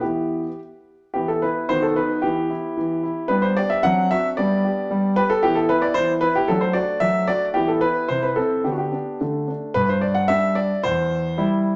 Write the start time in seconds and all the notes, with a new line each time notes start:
0.01 E3 B3 E4 G4
1.14 E3 B3 E4 G4
1.28 A4
1.42 E4 B4
1.69 D#3 B3 F#4 C5
1.82 A4
1.96 D#4 B4
2.22 E3 B3 E4 G4
2.50 E4
2.77 E3
3.03 E4
3.28 G3 B3 D4 B4
3.42 C5
3.57 G4 D5
3.70 E5
3.83 F#3 C4 D4 F#5
4.11 F#4 E5
4.37 G3 B3 D4 D5
4.64 G4
4.91 G3
5.16 G4 B4
5.30 A4
5.43 E3 B3 E4 G4
5.55 A4
5.69 E4 B4
5.82 D5
5.94 E3 C5
6.21 E4 B4
6.36 G4
6.48 F#3 A3 D4 A4
6.61 C5
6.73 F#4 D5
7.00 F#3 E5
7.28 F#4 D5
7.54 E3 B3 E4 G4
7.68 A4
7.81 E4 B4
8.09 C3 C4 E4 C5
8.23 B4
8.36 C4 A4
8.64 D3 B3 D4 G4
8.72 F#4
8.78 G4
8.92 D4
9.21 D3 A3 D4
9.48 D4
9.74 G2 B4
9.89 C5
10.01 D5
10.15 F#5
10.28 G3 D4 E5
10.55 D5
10.83 E2 C5
11.38 G3 E4